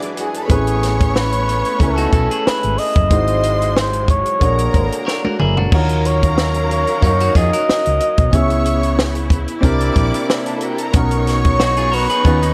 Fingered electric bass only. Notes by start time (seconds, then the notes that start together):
0.50 A1
1.80 C#2
2.13 B1
2.47 muted fingered electric bass stroke
2.64 G#1
2.96 F#1
3.11 G#1
4.42 A#1
4.75 G#1
5.26 muted fingered electric bass stroke
5.41 F#1
5.73 D#2
7.03 F#2
7.36 F2
7.69 muted fingered electric bass stroke
7.87 C#2
8.19 B1
8.34 C#2
9.63 C2
9.96 A#1
10.94 B1
12.25 D#2